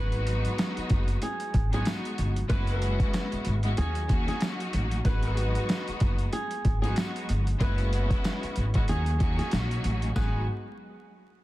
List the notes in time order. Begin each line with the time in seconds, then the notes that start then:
Already playing: G#1 F#3 G#3 B3 D#4 F#4 B4
0.12 closed hi-hat
0.27 closed hi-hat
0.45 closed hi-hat
0.58 snare, closed hi-hat, tambourine
0.77 muted upright bass stroke, closed hi-hat
0.90 F#1, kick, closed hi-hat
1.08 closed hi-hat
1.22 G#4, closed hi-hat
1.40 closed hi-hat
1.54 G#1, kick, closed hi-hat
1.72 F#3 G#3 B3 D#4 F#4 G#4, closed hi-hat
1.85 snare, closed hi-hat, tambourine
2.05 closed hi-hat
2.18 G1, closed hi-hat
2.36 closed hi-hat
2.47 F#1 G#3 B3 C#4 E4 F#4 B4, kick, closed hi-hat
2.67 closed hi-hat
2.82 closed hi-hat
3.00 kick, closed hi-hat
3.14 snare, closed hi-hat, tambourine
3.32 muted upright bass stroke, closed hi-hat
3.45 G#1, closed hi-hat
3.62 G#3 B3 C#4 E4 F#4, closed hi-hat
3.76 D#2 F#3 A#3 C#4 D#4 F#4 G#4, closed hi-hat
3.95 closed hi-hat
4.07 F#3 A#3 C#4 D#4 F#4, kick, closed hi-hat
4.28 G#4, snare, closed hi-hat
4.40 snare, closed hi-hat, tambourine
4.60 closed hi-hat
4.73 A1, closed hi-hat
4.91 closed hi-hat
5.04 G#1 F#3 G#3 B3 D#4 F#4 B4, kick, closed hi-hat
5.23 closed hi-hat
5.37 closed hi-hat
5.55 closed hi-hat
5.69 snare, closed hi-hat, tambourine
5.88 muted upright bass stroke, closed hi-hat
6.00 F#1, kick, closed hi-hat
6.18 closed hi-hat
6.33 G#4, closed hi-hat
6.51 closed hi-hat
6.65 G#1, kick, closed hi-hat
6.82 F#3 G#3 B3 D#4 F#4 G#4, closed hi-hat
6.96 snare, closed hi-hat, tambourine
7.16 closed hi-hat
7.29 G1, closed hi-hat
7.47 closed hi-hat
7.58 F#1 G#3 B3 C#4 E4 F#4 B4, kick, closed hi-hat
7.62 B4
7.78 closed hi-hat
7.93 closed hi-hat
8.10 kick, closed hi-hat
8.24 snare, closed hi-hat, tambourine
8.43 muted upright bass stroke, closed hi-hat
8.56 G#1, closed hi-hat
8.73 G#3 B3 C#4 E4 F#4, kick, closed hi-hat
8.87 D#2 F#3 A#3 C#4 D#4 F#4 G#4, closed hi-hat
9.06 closed hi-hat
9.17 F#3 A#3 C#4 D#4 F#4, kick, closed hi-hat
9.39 G#4, snare, closed hi-hat
9.51 A#1, snare, closed hi-hat, tambourine
9.71 closed hi-hat
9.84 A1, closed hi-hat
10.02 closed hi-hat
10.15 G#1 F#3 G#3 B3 D#4 F#4 G#4 B4, kick, snare, tambourine